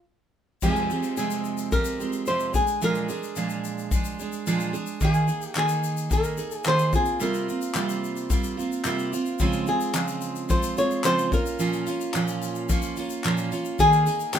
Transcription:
0.62 steel-string acoustic guitar F2 C3 F3 G#3 C4 G4, nylon-string guitar G#4, kick, crash, shaker
0.76 shaker
0.90 steel-string acoustic guitar F3 G#3 C4 G4, shaker
1.03 shaker
1.17 steel-string acoustic guitar F2 C3 F3 G#3 C4, nylon-string guitar G#4, shaker
1.31 shaker
1.44 shaker
1.58 shaker
1.72 steel-string acoustic guitar F3 G#3 C4 G4, nylon-string guitar A#4, kick, shaker
1.85 shaker
2.00 steel-string acoustic guitar F3 G#3 C4 G4, shaker
2.13 shaker
2.26 steel-string acoustic guitar F2 C3 F3 G#3 C4 G4, nylon-string guitar C5, shaker
2.40 shaker
2.53 steel-string acoustic guitar G#3 D4 G#4, nylon-string guitar G#4, kick, shaker
2.67 shaker
2.82 steel-string acoustic guitar A#2 F3 G#3 D4 G#4, nylon-string guitar A#4, shaker
2.95 shaker
3.09 steel-string acoustic guitar G#3 D4 G#4, shaker
3.23 shaker
3.36 steel-string acoustic guitar A#2 F3 G#3 D4 G#4, shaker
3.50 shaker
3.64 shaker
3.78 shaker
3.91 steel-string acoustic guitar F3 G#3 D4 G#4, kick, shaker
4.05 shaker
4.19 steel-string acoustic guitar G#3 D4 G#4, shaker
4.32 shaker
4.47 steel-string acoustic guitar A#2 F3 G#3 D4 G#4, shaker
4.60 shaker
4.73 steel-string acoustic guitar G#3 D4 G#4, shaker
4.87 shaker
5.01 steel-string acoustic guitar D#3 A#3 D#4 G#4, nylon-string guitar G#4, kick, shaker
5.14 shaker
5.28 steel-string acoustic guitar A#3 D#4 G#4, shaker
5.42 nylon-string guitar G4, shaker
5.55 steel-string acoustic guitar D#3 A#3 D#4 G#4, nylon-string guitar G#4, clap, shaker
5.69 shaker
5.83 shaker
5.97 shaker
6.10 steel-string acoustic guitar D#3 A#3 D#4 G#4, nylon-string guitar A#4, kick, shaker
6.24 shaker
6.37 steel-string acoustic guitar A#3 D#4 G#4, shaker
6.51 shaker
6.57 nylon-string guitar G#4
6.64 steel-string acoustic guitar D#3 A#3 D#4 G#4, nylon-string guitar C5, clap, shaker
6.79 shaker
6.93 steel-string acoustic guitar A#3 C4 F4, nylon-string guitar G#4, kick, shaker
7.06 shaker
7.20 steel-string acoustic guitar C3 G3 A#3 C4 F4, nylon-string guitar A#4, shaker
7.34 shaker
7.48 steel-string acoustic guitar A#3 C4 F4, shaker
7.62 shaker
7.75 steel-string acoustic guitar C3 G3 A#3 C4 F4, clap, shaker
7.89 shaker
8.04 shaker
8.16 shaker
8.30 steel-string acoustic guitar G3 A#3 C4 F4, kick, shaker
8.44 shaker
8.57 steel-string acoustic guitar A#3 C4 F4, shaker
8.72 shaker
8.85 steel-string acoustic guitar C3 G3 A#3 C4 F4, clap, shaker
8.99 shaker
9.13 steel-string acoustic guitar A#3 C4 F4, shaker
9.26 shaker
9.39 steel-string acoustic guitar C#3 F3 G#3 C4 F4, kick, shaker
9.53 shaker
9.67 steel-string acoustic guitar G#3 C4 F4, nylon-string guitar G#4, shaker
9.81 shaker
9.93 steel-string acoustic guitar C#3 F3 G#3 C4 F4, clap, shaker
10.08 shaker
10.21 shaker
10.36 shaker
10.49 steel-string acoustic guitar F3 G#3 C4 F4, nylon-string guitar C5, kick, shaker
10.63 shaker
10.77 steel-string acoustic guitar G#3 C4 F4, nylon-string guitar C#5, shaker
10.91 shaker
11.04 steel-string acoustic guitar C#3 F3 G#3 C4 F4, nylon-string guitar C5, clap, shaker
11.19 shaker
11.32 steel-string acoustic guitar A#3 C#4 F4, nylon-string guitar A#4, kick, shaker
11.46 shaker
11.59 steel-string acoustic guitar A#2 F3 A#3 C#4 F4, shaker
11.73 shaker
11.87 steel-string acoustic guitar A#3 C#4 F4, tambourine, shaker
12.01 shaker
12.14 steel-string acoustic guitar A#2 F3 A#3 C#4 F4, clap, shaker
12.28 shaker
12.42 tambourine, shaker
12.55 shaker
12.69 steel-string acoustic guitar F3 A#3 C#4 F4, kick, shaker
12.82 shaker
12.97 steel-string acoustic guitar A#3 C#4 F4, tambourine, shaker
13.10 shaker
13.24 steel-string acoustic guitar A#2 F3 A#3 C#4 F4, clap, shaker
13.38 shaker
13.52 steel-string acoustic guitar A#3 C#4 F4, tambourine, shaker
13.65 shaker
13.79 steel-string acoustic guitar D#3 A#3 D#4 G#4, nylon-string guitar G#4, kick, shaker
13.92 shaker
14.06 steel-string acoustic guitar A#3 D#4 G#4, tambourine, shaker
14.20 shaker
14.33 steel-string acoustic guitar D#3 A#3 D#4 G#4, nylon-string guitar G#4, clap, shaker

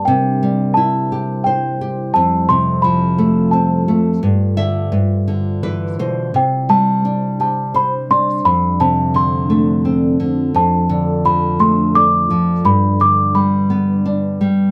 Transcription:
Already playing: ambient pad G3
0.05 nylon-string guitar C3, ambient pad E4 C5, celesta G5
0.43 nylon-string guitar G3
0.74 nylon-string guitar E4, celesta A5
1.12 nylon-string guitar G4
1.44 nylon-string guitar C5, celesta G5
1.81 nylon-string guitar G4
2.14 nylon-string guitar F2, ambient pad F4 A4, celesta A5
2.49 nylon-string guitar C3, celesta C6
2.82 nylon-string guitar F3, celesta B5
3.18 nylon-string guitar A3
3.51 nylon-string guitar C4, celesta A5
3.88 nylon-string guitar A3
4.23 nylon-string guitar G2
4.57 nylon-string guitar D3 E5
4.92 nylon-string guitar G2, ambient pad E4 D5
5.28 nylon-string guitar D3
5.63 nylon-string guitar E3 B4
5.99 nylon-string guitar B2 C5
6.34 nylon-string guitar C3, ambient pad G3 D4 C5, celesta G5
6.69 nylon-string guitar G3, celesta A5
7.05 nylon-string guitar D4
7.40 nylon-string guitar G4, celesta A5
7.74 nylon-string guitar C5, celesta B5
8.10 nylon-string guitar D4, celesta C6
8.45 nylon-string guitar F2, ambient pad F3 A4, celesta B5
8.80 nylon-string guitar C3, celesta A5
9.14 nylon-string guitar D3, celesta C6
9.50 nylon-string guitar A3
9.85 nylon-string guitar C4
10.20 nylon-string guitar D3
10.54 nylon-string guitar F2, ambient pad D4, celesta A5
10.89 nylon-string guitar D3
11.25 nylon-string guitar F3, celesta B5
11.59 nylon-string guitar A3, celesta C6
11.95 nylon-string guitar D4, celesta D6
12.30 nylon-string guitar F3
12.64 nylon-string guitar G2, ambient pad G3 B4, celesta B5
13.00 nylon-string guitar D3, celesta D6
13.35 nylon-string guitar G3, celesta B5
13.70 nylon-string guitar B3
14.06 nylon-string guitar D4
14.41 nylon-string guitar G3

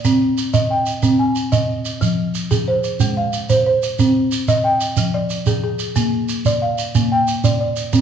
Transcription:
Already playing: marimba D5
0.05 marimba C4, shekere
0.38 shekere
0.54 marimba D#5, shekere
0.70 marimba G5
0.86 shekere
1.03 marimba C4, shekere
1.19 marimba G#5
1.36 shekere
1.52 marimba D#5, shekere
1.85 shekere
2.01 marimba F3, shekere
2.35 shekere
2.51 marimba G#4, shekere
2.68 marimba C5
2.84 shekere
3.00 marimba G#3, shekere
3.17 marimba F5
3.33 shekere
3.50 marimba C5, shekere
3.66 marimba C5
3.83 shekere
3.99 marimba C4, shekere
4.32 shekere
4.48 marimba D#5, shekere
4.64 marimba G5
4.81 shekere
4.97 marimba F3, shekere
5.14 marimba D5
5.30 shekere
5.46 marimba G#4, shekere
5.64 marimba G#4
5.79 shekere
5.96 marimba A#3, shekere
6.29 shekere
6.45 marimba D5, shekere
6.62 marimba F5
6.78 shekere
6.95 marimba A#3, shekere
7.12 marimba G5
7.27 shekere
7.44 marimba D5, shekere
7.60 marimba D5
7.76 shekere
7.93 marimba C4, shekere

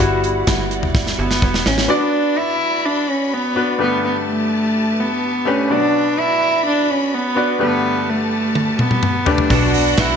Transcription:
Already playing: string section F#5
0.00 analog synth bass G1, clean electric guitar G3 B3 E4 F#4, grand piano G3 E4 F#4, string section D5, kick, closed hi-hat
0.23 clean electric guitar B3 E4 F#4, closed hi-hat
0.47 analog synth bass G1, clean electric guitar G3 B3 E4 F#4, kick, snare, closed hi-hat
0.71 closed hi-hat
0.83 floor tom
0.95 kick, snare
1.07 snare
1.18 analog synth bass G1, cello B3, clean electric guitar B3 E4 F#4
1.31 snare
1.41 analog synth bass E1, clean electric guitar G3 B3 E4 F#4, kick
1.54 snare
1.65 analog synth bass A1, clean electric guitar B3 E4 F#4, cello C#4, snare
1.78 snare
1.88 grand piano B3 D4 F#4 D5, cello D4, string section F#4 D5 B5
2.38 cello E4
2.85 cello D4
3.09 cello C#4
3.34 cello B3
3.55 grand piano B3 D4 F#4 B4
3.79 grand piano G2 D3 A3 D4 G4 B4, cello B3, string section G4 B4 A5
4.05 cello B3
4.29 cello A3
5.00 cello B3
5.45 grand piano A3 D4 G4 B4, cello C#4
5.69 grand piano B2 F#3 B3 D4 F#4 D5, cello D4, string section F#4 D5 B5
6.20 cello E4
6.67 cello D4
6.91 cello C#4
7.14 cello B3
7.35 grand piano B3 D4 F#4 D5
7.59 grand piano G2 D3 A3 D4 G4 B4, cello B3, string section G4 B4 A5
8.09 cello A3
8.55 high tom
8.79 cello B3, mid tom
8.91 mid tom
9.03 mid tom
9.25 grand piano A3 D4 G4 B4, cello D4, floor tom
9.38 floor tom
9.49 analog synth bass B1, clean electric guitar B2 F#3 B3 D4 F#4, grand piano B2 F#3 B3 D4 F#4 D5, violin section F#4 F#5, string section F#4 D5 B5, kick, open hi-hat
9.74 clean electric guitar B3 D4 F#4, hi-hat pedal, open hi-hat
9.97 analog synth bass B1, clean electric guitar B2 F#3 B3 D4 F#4, cello E4, kick, snare, hi-hat pedal, open hi-hat

